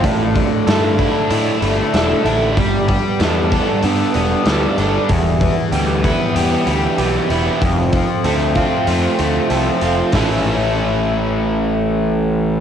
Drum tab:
HH |oooooooo|oooooooo|oooooooo|oooooooo|
SD |--o---o-|--o---o-|--------|--------|
BD |oo-o----|oo-o----|oo-o----|oo-o----|

HH |o-------|
SD |o-------|
BD |o-------|